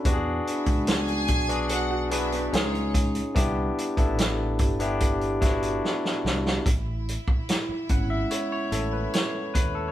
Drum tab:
HH |x-xxxxxxx-xxxxxx|x-xxx-xxxxxx----|x-x-x-x-x-x-x-x-|
SD |----o-------o---|----o-----o-oooo|----o-------o---|
BD |o--o--o-------o-|o--o--o-o-o-----|o--o--o-------o-|